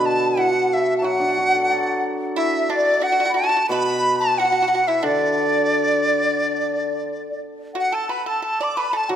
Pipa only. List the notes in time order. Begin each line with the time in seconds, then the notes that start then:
Already playing: B4
0.37 E4
0.56 F#4
1.04 F#4
2.36 E4
2.70 D4
3.02 F#4
3.12 F#4
3.20 F#4
3.25 F#4
3.34 F#4
3.44 F#4
3.49 F#4
3.57 F#4
3.72 B4
4.40 F#4
4.45 F#4
4.52 F#4
4.62 F#4
4.68 F#4
4.75 F#4
4.88 E4
5.03 D4
7.75 F#4
7.92 A4
8.09 B4
8.26 A4
8.42 A4
8.61 D5
8.77 B4
8.93 A4
9.09 F#4